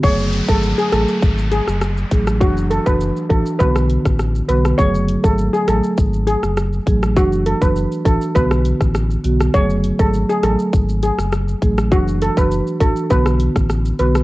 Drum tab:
HH |--x---x---x---x-|--x---x---x---x-|--x---x---x---x-|--x---x---x---x-|
SH |xxxxxxxxxxxxxxxx|xxxxxxxxxxxxxxxx|xxxxxxxxxxxxxxxx|xxxxxxxxxxxxxxxx|
SD |------r----rr--r|---------r-rr--r|------r----rr--r|---------r-rr--r|
BD |o--o----o-----o-|o--o--o-o--o----|o--o----o-----o-|o--o--o-o--o----|

HH |--x---x---x---x-|--x---x---x---x-|
SH |xxxxxxxxxxxxxxxx|xxxxxxxxxxxxxxxx|
SD |------r----rr--r|---------r-rr--r|
BD |o--o----o-----o-|o--o--o-o--o----|